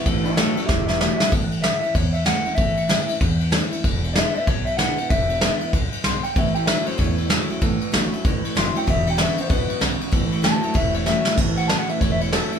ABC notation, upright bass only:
X:1
M:4/4
L:1/8
Q:"Swing" 1/4=191
K:A
V:1 name="Upright bass" clef=bass
A,,,3 z E,,,3 z | A,,,3 z E,,3 z | A,,,3 z E,,3 z | E,,,3 z B,,,3 z |
E,,,3 z C,, z B,,, z | A,,,3 z E,,3 z | A,,, z A,,, z G,,, z F,,, z | E,,,3 z C,, z B,,, z |
A,,,3 z E,,,3 z | A,,,3 z E,,,3 z |]